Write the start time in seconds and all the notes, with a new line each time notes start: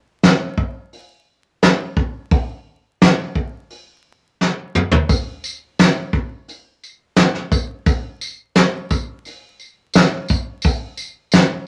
0.23 snare, open hi-hat
0.58 kick
0.93 open hi-hat
1.62 snare, open hi-hat
1.97 kick
2.31 kick, open hi-hat
3.01 snare, open hi-hat
3.35 kick
3.70 open hi-hat
4.41 snare
4.75 mid tom
4.91 floor tom
5.09 kick, open hi-hat, tambourine
5.44 tambourine
5.79 snare, tambourine
6.13 kick
6.48 open hi-hat, tambourine
6.83 tambourine
7.16 snare, tambourine
7.35 snare
7.52 kick, tambourine
7.86 kick, open hi-hat, tambourine
8.21 tambourine
8.55 snare, open hi-hat, tambourine
8.90 kick, tambourine
9.25 open hi-hat, tambourine
9.60 tambourine
9.94 snare, tambourine
10.28 kick, tambourine
10.62 kick, open hi-hat, tambourine
10.97 tambourine
11.32 snare, tambourine